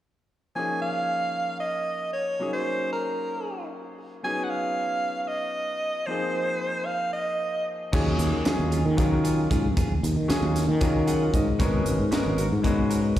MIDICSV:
0, 0, Header, 1, 7, 480
1, 0, Start_track
1, 0, Key_signature, -6, "minor"
1, 0, Tempo, 524934
1, 514, Time_signature, 7, 3, 24, 8
1, 12066, End_track
2, 0, Start_track
2, 0, Title_t, "Soprano saxophone"
2, 0, Program_c, 0, 64
2, 511, Note_on_c, 0, 80, 74
2, 736, Note_off_c, 0, 80, 0
2, 748, Note_on_c, 0, 77, 87
2, 1436, Note_off_c, 0, 77, 0
2, 1465, Note_on_c, 0, 75, 73
2, 1918, Note_off_c, 0, 75, 0
2, 1948, Note_on_c, 0, 73, 70
2, 2288, Note_off_c, 0, 73, 0
2, 2313, Note_on_c, 0, 72, 66
2, 2651, Note_off_c, 0, 72, 0
2, 2675, Note_on_c, 0, 70, 55
2, 3363, Note_off_c, 0, 70, 0
2, 3879, Note_on_c, 0, 80, 76
2, 4058, Note_on_c, 0, 78, 55
2, 4071, Note_off_c, 0, 80, 0
2, 4113, Note_on_c, 0, 77, 88
2, 4127, Note_off_c, 0, 78, 0
2, 4777, Note_off_c, 0, 77, 0
2, 4777, Note_on_c, 0, 77, 56
2, 4825, Note_on_c, 0, 75, 74
2, 4839, Note_off_c, 0, 77, 0
2, 5546, Note_on_c, 0, 72, 74
2, 5560, Note_off_c, 0, 75, 0
2, 6268, Note_on_c, 0, 77, 76
2, 6281, Note_off_c, 0, 72, 0
2, 6514, Note_off_c, 0, 77, 0
2, 6520, Note_on_c, 0, 75, 68
2, 7029, Note_off_c, 0, 75, 0
2, 12066, End_track
3, 0, Start_track
3, 0, Title_t, "Clean electric guitar"
3, 0, Program_c, 1, 27
3, 7250, Note_on_c, 1, 54, 81
3, 7251, Note_on_c, 1, 61, 82
3, 7255, Note_on_c, 1, 68, 92
3, 7256, Note_on_c, 1, 65, 85
3, 7395, Note_off_c, 1, 54, 0
3, 7395, Note_off_c, 1, 61, 0
3, 7398, Note_off_c, 1, 65, 0
3, 7398, Note_off_c, 1, 68, 0
3, 7729, Note_on_c, 1, 54, 60
3, 7735, Note_on_c, 1, 61, 62
3, 7737, Note_on_c, 1, 65, 59
3, 7742, Note_on_c, 1, 68, 72
3, 7874, Note_off_c, 1, 54, 0
3, 7877, Note_off_c, 1, 61, 0
3, 7878, Note_off_c, 1, 65, 0
3, 7881, Note_off_c, 1, 68, 0
3, 7968, Note_on_c, 1, 68, 51
3, 7976, Note_on_c, 1, 65, 47
3, 7980, Note_on_c, 1, 61, 43
3, 8113, Note_off_c, 1, 68, 0
3, 8117, Note_off_c, 1, 65, 0
3, 8119, Note_off_c, 1, 61, 0
3, 8207, Note_on_c, 1, 54, 77
3, 8212, Note_on_c, 1, 61, 81
3, 8213, Note_on_c, 1, 65, 82
3, 8215, Note_on_c, 1, 68, 93
3, 8353, Note_off_c, 1, 54, 0
3, 8355, Note_off_c, 1, 61, 0
3, 8356, Note_off_c, 1, 65, 0
3, 8357, Note_off_c, 1, 68, 0
3, 8447, Note_on_c, 1, 68, 50
3, 8452, Note_on_c, 1, 65, 55
3, 8458, Note_on_c, 1, 61, 43
3, 8592, Note_off_c, 1, 68, 0
3, 8595, Note_off_c, 1, 65, 0
3, 8598, Note_off_c, 1, 61, 0
3, 8688, Note_on_c, 1, 54, 59
3, 8693, Note_on_c, 1, 61, 54
3, 8698, Note_on_c, 1, 65, 56
3, 8699, Note_on_c, 1, 68, 67
3, 8832, Note_off_c, 1, 54, 0
3, 8835, Note_off_c, 1, 61, 0
3, 8837, Note_off_c, 1, 65, 0
3, 8838, Note_off_c, 1, 68, 0
3, 8931, Note_on_c, 1, 54, 72
3, 8935, Note_on_c, 1, 61, 86
3, 8935, Note_on_c, 1, 65, 82
3, 8940, Note_on_c, 1, 68, 92
3, 9074, Note_off_c, 1, 54, 0
3, 9075, Note_off_c, 1, 61, 0
3, 9076, Note_off_c, 1, 65, 0
3, 9078, Note_off_c, 1, 68, 0
3, 9405, Note_on_c, 1, 54, 72
3, 9408, Note_on_c, 1, 61, 62
3, 9412, Note_on_c, 1, 65, 71
3, 9414, Note_on_c, 1, 68, 68
3, 9550, Note_off_c, 1, 54, 0
3, 9551, Note_off_c, 1, 61, 0
3, 9554, Note_off_c, 1, 65, 0
3, 9554, Note_off_c, 1, 68, 0
3, 9881, Note_on_c, 1, 54, 83
3, 9884, Note_on_c, 1, 61, 86
3, 9887, Note_on_c, 1, 65, 97
3, 9887, Note_on_c, 1, 68, 94
3, 10027, Note_off_c, 1, 54, 0
3, 10029, Note_off_c, 1, 61, 0
3, 10030, Note_off_c, 1, 65, 0
3, 10030, Note_off_c, 1, 68, 0
3, 10126, Note_on_c, 1, 68, 60
3, 10130, Note_on_c, 1, 65, 50
3, 10135, Note_on_c, 1, 61, 47
3, 10269, Note_off_c, 1, 68, 0
3, 10271, Note_off_c, 1, 65, 0
3, 10274, Note_off_c, 1, 61, 0
3, 10599, Note_on_c, 1, 59, 73
3, 10603, Note_on_c, 1, 61, 91
3, 10605, Note_on_c, 1, 66, 81
3, 10608, Note_on_c, 1, 70, 87
3, 10744, Note_off_c, 1, 59, 0
3, 10746, Note_off_c, 1, 61, 0
3, 10747, Note_off_c, 1, 66, 0
3, 10749, Note_off_c, 1, 70, 0
3, 11078, Note_on_c, 1, 59, 60
3, 11084, Note_on_c, 1, 61, 60
3, 11087, Note_on_c, 1, 66, 70
3, 11090, Note_on_c, 1, 70, 75
3, 11223, Note_off_c, 1, 59, 0
3, 11226, Note_off_c, 1, 61, 0
3, 11228, Note_off_c, 1, 66, 0
3, 11229, Note_off_c, 1, 70, 0
3, 11317, Note_on_c, 1, 70, 48
3, 11323, Note_on_c, 1, 66, 47
3, 11329, Note_on_c, 1, 61, 41
3, 11462, Note_off_c, 1, 70, 0
3, 11465, Note_off_c, 1, 66, 0
3, 11468, Note_off_c, 1, 61, 0
3, 11556, Note_on_c, 1, 59, 78
3, 11559, Note_on_c, 1, 61, 87
3, 11562, Note_on_c, 1, 66, 97
3, 11563, Note_on_c, 1, 70, 91
3, 11701, Note_off_c, 1, 59, 0
3, 11703, Note_off_c, 1, 61, 0
3, 11704, Note_off_c, 1, 66, 0
3, 11705, Note_off_c, 1, 70, 0
3, 11793, Note_on_c, 1, 70, 62
3, 11799, Note_on_c, 1, 66, 49
3, 11804, Note_on_c, 1, 61, 49
3, 11939, Note_off_c, 1, 70, 0
3, 11942, Note_off_c, 1, 66, 0
3, 11945, Note_off_c, 1, 61, 0
3, 12066, End_track
4, 0, Start_track
4, 0, Title_t, "Grand piano"
4, 0, Program_c, 2, 0
4, 505, Note_on_c, 2, 53, 48
4, 510, Note_on_c, 2, 58, 42
4, 521, Note_on_c, 2, 61, 43
4, 528, Note_on_c, 2, 63, 45
4, 535, Note_on_c, 2, 68, 53
4, 2160, Note_off_c, 2, 53, 0
4, 2162, Note_off_c, 2, 58, 0
4, 2168, Note_off_c, 2, 61, 0
4, 2171, Note_off_c, 2, 63, 0
4, 2175, Note_off_c, 2, 68, 0
4, 2188, Note_on_c, 2, 54, 52
4, 2196, Note_on_c, 2, 58, 44
4, 2201, Note_on_c, 2, 61, 45
4, 2210, Note_on_c, 2, 63, 45
4, 2215, Note_on_c, 2, 68, 54
4, 3845, Note_off_c, 2, 54, 0
4, 3849, Note_off_c, 2, 58, 0
4, 3851, Note_off_c, 2, 61, 0
4, 3856, Note_off_c, 2, 63, 0
4, 3859, Note_off_c, 2, 68, 0
4, 3869, Note_on_c, 2, 54, 51
4, 3871, Note_on_c, 2, 59, 47
4, 3881, Note_on_c, 2, 61, 47
4, 3889, Note_on_c, 2, 63, 47
4, 3896, Note_on_c, 2, 68, 56
4, 5528, Note_off_c, 2, 54, 0
4, 5529, Note_off_c, 2, 59, 0
4, 5534, Note_off_c, 2, 61, 0
4, 5539, Note_off_c, 2, 63, 0
4, 5542, Note_off_c, 2, 68, 0
4, 5549, Note_on_c, 2, 53, 49
4, 5560, Note_on_c, 2, 58, 48
4, 5565, Note_on_c, 2, 60, 52
4, 5571, Note_on_c, 2, 63, 50
4, 5582, Note_on_c, 2, 68, 59
4, 7208, Note_off_c, 2, 53, 0
4, 7213, Note_off_c, 2, 58, 0
4, 7216, Note_off_c, 2, 60, 0
4, 7219, Note_off_c, 2, 63, 0
4, 7225, Note_off_c, 2, 68, 0
4, 7244, Note_on_c, 2, 54, 78
4, 7248, Note_on_c, 2, 61, 76
4, 7250, Note_on_c, 2, 63, 77
4, 7254, Note_on_c, 2, 65, 73
4, 7257, Note_on_c, 2, 68, 95
4, 7632, Note_off_c, 2, 54, 0
4, 7634, Note_off_c, 2, 61, 0
4, 7635, Note_off_c, 2, 63, 0
4, 7637, Note_off_c, 2, 65, 0
4, 7638, Note_off_c, 2, 68, 0
4, 7725, Note_on_c, 2, 54, 69
4, 7725, Note_on_c, 2, 61, 63
4, 7729, Note_on_c, 2, 63, 64
4, 7735, Note_on_c, 2, 65, 65
4, 7737, Note_on_c, 2, 68, 83
4, 8023, Note_off_c, 2, 61, 0
4, 8024, Note_off_c, 2, 54, 0
4, 8025, Note_off_c, 2, 63, 0
4, 8028, Note_off_c, 2, 65, 0
4, 8029, Note_off_c, 2, 68, 0
4, 8194, Note_on_c, 2, 54, 79
4, 8202, Note_on_c, 2, 61, 64
4, 8203, Note_on_c, 2, 63, 68
4, 8206, Note_on_c, 2, 65, 68
4, 8211, Note_on_c, 2, 70, 80
4, 8792, Note_off_c, 2, 54, 0
4, 8796, Note_off_c, 2, 61, 0
4, 8797, Note_off_c, 2, 63, 0
4, 8798, Note_off_c, 2, 65, 0
4, 8801, Note_off_c, 2, 70, 0
4, 9399, Note_on_c, 2, 54, 78
4, 9402, Note_on_c, 2, 61, 68
4, 9409, Note_on_c, 2, 63, 63
4, 9410, Note_on_c, 2, 65, 65
4, 9416, Note_on_c, 2, 68, 80
4, 9698, Note_off_c, 2, 54, 0
4, 9699, Note_off_c, 2, 61, 0
4, 9703, Note_off_c, 2, 63, 0
4, 9703, Note_off_c, 2, 65, 0
4, 9706, Note_off_c, 2, 68, 0
4, 9881, Note_on_c, 2, 54, 75
4, 9888, Note_on_c, 2, 61, 68
4, 9891, Note_on_c, 2, 63, 71
4, 9893, Note_on_c, 2, 65, 73
4, 9897, Note_on_c, 2, 70, 84
4, 10121, Note_on_c, 2, 78, 69
4, 10345, Note_off_c, 2, 78, 0
4, 10366, Note_on_c, 2, 75, 66
4, 10472, Note_off_c, 2, 54, 0
4, 10476, Note_off_c, 2, 61, 0
4, 10477, Note_off_c, 2, 63, 0
4, 10478, Note_off_c, 2, 65, 0
4, 10480, Note_off_c, 2, 70, 0
4, 10588, Note_off_c, 2, 75, 0
4, 10601, Note_on_c, 2, 56, 87
4, 10602, Note_on_c, 2, 59, 77
4, 10606, Note_on_c, 2, 66, 76
4, 10607, Note_on_c, 2, 61, 83
4, 10616, Note_on_c, 2, 70, 94
4, 10984, Note_off_c, 2, 56, 0
4, 10985, Note_off_c, 2, 59, 0
4, 10987, Note_off_c, 2, 66, 0
4, 10988, Note_off_c, 2, 61, 0
4, 10992, Note_off_c, 2, 70, 0
4, 11074, Note_on_c, 2, 56, 74
4, 11080, Note_on_c, 2, 59, 63
4, 11080, Note_on_c, 2, 61, 65
4, 11088, Note_on_c, 2, 66, 66
4, 11093, Note_on_c, 2, 70, 83
4, 11372, Note_off_c, 2, 56, 0
4, 11375, Note_off_c, 2, 59, 0
4, 11375, Note_off_c, 2, 61, 0
4, 11379, Note_off_c, 2, 66, 0
4, 11381, Note_off_c, 2, 70, 0
4, 11552, Note_on_c, 2, 56, 78
4, 11560, Note_on_c, 2, 59, 71
4, 11564, Note_on_c, 2, 61, 64
4, 11565, Note_on_c, 2, 66, 72
4, 11568, Note_on_c, 2, 71, 82
4, 12066, Note_off_c, 2, 56, 0
4, 12066, Note_off_c, 2, 59, 0
4, 12066, Note_off_c, 2, 61, 0
4, 12066, Note_off_c, 2, 66, 0
4, 12066, Note_off_c, 2, 71, 0
4, 12066, End_track
5, 0, Start_track
5, 0, Title_t, "Fretless electric bass"
5, 0, Program_c, 3, 35
5, 7252, Note_on_c, 3, 39, 80
5, 7470, Note_off_c, 3, 39, 0
5, 7487, Note_on_c, 3, 39, 80
5, 7598, Note_off_c, 3, 39, 0
5, 7612, Note_on_c, 3, 51, 75
5, 7721, Note_off_c, 3, 51, 0
5, 7854, Note_on_c, 3, 39, 78
5, 8071, Note_off_c, 3, 39, 0
5, 8094, Note_on_c, 3, 51, 81
5, 8655, Note_off_c, 3, 51, 0
5, 8696, Note_on_c, 3, 44, 85
5, 8935, Note_off_c, 3, 44, 0
5, 8935, Note_on_c, 3, 39, 89
5, 9150, Note_off_c, 3, 39, 0
5, 9174, Note_on_c, 3, 39, 85
5, 9280, Note_off_c, 3, 39, 0
5, 9292, Note_on_c, 3, 51, 76
5, 9399, Note_off_c, 3, 51, 0
5, 9525, Note_on_c, 3, 39, 80
5, 9743, Note_off_c, 3, 39, 0
5, 9768, Note_on_c, 3, 51, 89
5, 10328, Note_off_c, 3, 51, 0
5, 10369, Note_on_c, 3, 44, 84
5, 10605, Note_on_c, 3, 32, 94
5, 10619, Note_off_c, 3, 44, 0
5, 10821, Note_off_c, 3, 32, 0
5, 10842, Note_on_c, 3, 32, 81
5, 10951, Note_off_c, 3, 32, 0
5, 10967, Note_on_c, 3, 44, 75
5, 11073, Note_off_c, 3, 44, 0
5, 11210, Note_on_c, 3, 32, 80
5, 11423, Note_off_c, 3, 32, 0
5, 11451, Note_on_c, 3, 44, 90
5, 12007, Note_off_c, 3, 44, 0
5, 12066, End_track
6, 0, Start_track
6, 0, Title_t, "Muted fretless electric bass strokes"
6, 7729, Note_on_c, 9, 29, 33
6, 7820, Note_off_c, 9, 29, 0
6, 9409, Note_on_c, 9, 29, 36
6, 9501, Note_off_c, 9, 29, 0
6, 11082, Note_on_c, 9, 29, 33
6, 11173, Note_off_c, 9, 29, 0
6, 12066, End_track
7, 0, Start_track
7, 0, Title_t, "Drums"
7, 7252, Note_on_c, 9, 36, 98
7, 7253, Note_on_c, 9, 49, 88
7, 7344, Note_off_c, 9, 36, 0
7, 7344, Note_off_c, 9, 49, 0
7, 7490, Note_on_c, 9, 42, 54
7, 7582, Note_off_c, 9, 42, 0
7, 7730, Note_on_c, 9, 42, 73
7, 7737, Note_on_c, 9, 38, 107
7, 7821, Note_off_c, 9, 42, 0
7, 7829, Note_off_c, 9, 38, 0
7, 7974, Note_on_c, 9, 42, 51
7, 8065, Note_off_c, 9, 42, 0
7, 8212, Note_on_c, 9, 42, 66
7, 8213, Note_on_c, 9, 36, 94
7, 8303, Note_off_c, 9, 42, 0
7, 8304, Note_off_c, 9, 36, 0
7, 8455, Note_on_c, 9, 42, 53
7, 8547, Note_off_c, 9, 42, 0
7, 8694, Note_on_c, 9, 36, 73
7, 8697, Note_on_c, 9, 42, 58
7, 8786, Note_off_c, 9, 36, 0
7, 8788, Note_off_c, 9, 42, 0
7, 8934, Note_on_c, 9, 36, 102
7, 8936, Note_on_c, 9, 42, 80
7, 9025, Note_off_c, 9, 36, 0
7, 9027, Note_off_c, 9, 42, 0
7, 9180, Note_on_c, 9, 42, 57
7, 9271, Note_off_c, 9, 42, 0
7, 9415, Note_on_c, 9, 42, 76
7, 9422, Note_on_c, 9, 38, 94
7, 9506, Note_off_c, 9, 42, 0
7, 9514, Note_off_c, 9, 38, 0
7, 9654, Note_on_c, 9, 42, 56
7, 9661, Note_on_c, 9, 38, 33
7, 9746, Note_off_c, 9, 42, 0
7, 9753, Note_off_c, 9, 38, 0
7, 9883, Note_on_c, 9, 42, 70
7, 9888, Note_on_c, 9, 36, 92
7, 9975, Note_off_c, 9, 42, 0
7, 9979, Note_off_c, 9, 36, 0
7, 10127, Note_on_c, 9, 42, 54
7, 10219, Note_off_c, 9, 42, 0
7, 10366, Note_on_c, 9, 36, 72
7, 10368, Note_on_c, 9, 42, 54
7, 10458, Note_off_c, 9, 36, 0
7, 10459, Note_off_c, 9, 42, 0
7, 10604, Note_on_c, 9, 42, 79
7, 10605, Note_on_c, 9, 36, 99
7, 10696, Note_off_c, 9, 36, 0
7, 10696, Note_off_c, 9, 42, 0
7, 10844, Note_on_c, 9, 42, 55
7, 10935, Note_off_c, 9, 42, 0
7, 11081, Note_on_c, 9, 42, 76
7, 11089, Note_on_c, 9, 38, 101
7, 11173, Note_off_c, 9, 42, 0
7, 11180, Note_off_c, 9, 38, 0
7, 11322, Note_on_c, 9, 42, 56
7, 11413, Note_off_c, 9, 42, 0
7, 11561, Note_on_c, 9, 36, 95
7, 11561, Note_on_c, 9, 42, 70
7, 11652, Note_off_c, 9, 36, 0
7, 11653, Note_off_c, 9, 42, 0
7, 11801, Note_on_c, 9, 42, 53
7, 11892, Note_off_c, 9, 42, 0
7, 12066, End_track
0, 0, End_of_file